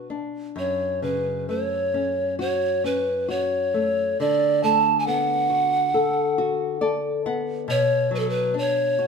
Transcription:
Already playing: B2
0.10 D4
0.56 F#2 C#5
1.02 C#3 B4
1.49 A3 C#5
1.94 C#4
2.39 F#4 C#5
2.84 C#4 B4
3.28 F#4 C#5
3.74 A3
4.20 D3 D5
4.63 A3 A5
4.99 G#5
5.07 B3 F#5
5.50 F#4
5.94 A4
6.38 F#4
6.81 A4 D5
7.26 B3 F#5
7.68 B2 C#5
8.11 F#3
8.15 B4
8.19 A4
8.29 B4
8.54 D4
8.58 C#5
8.99 F#4

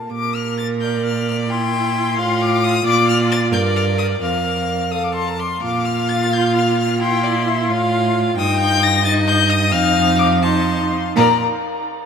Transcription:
Already playing: A5
0.12 A#2 A#4 D6
0.35 F6
0.58 A6
0.81 D5 G6
1.05 F6
1.28 F6
1.49 E4 G5 C6
2.17 A2 F4 F5
2.41 D6
2.64 D#6
2.85 A#2 F4 D5 D6
3.09 F6
3.31 A6
3.52 G2 A#4 D5 G6
3.76 F6
3.98 D#6
4.21 F2 A#4 F5 F6
4.91 A4 F5 D#6
5.03 D6
5.14 A5 C6
5.27 A#5
5.39 C6 D6
5.50 C6
5.61 A#2 F4 F5 D6
5.85 F6
6.08 A6
6.32 G6
6.55 F6
6.78 F6
7.00 E4 G5 C6
7.24 D5
7.48 E5
7.69 A2 F4 F5
8.37 G2 D#4 G5 D#6
8.60 G6
8.83 A#6
9.04 D#4 D#5 A6
9.27 G6
9.49 D#6
9.71 F2 D#4 F5 F6
10.19 D6
10.42 D#4 A5 C6
11.16 A#2 A#4 D5 A#5

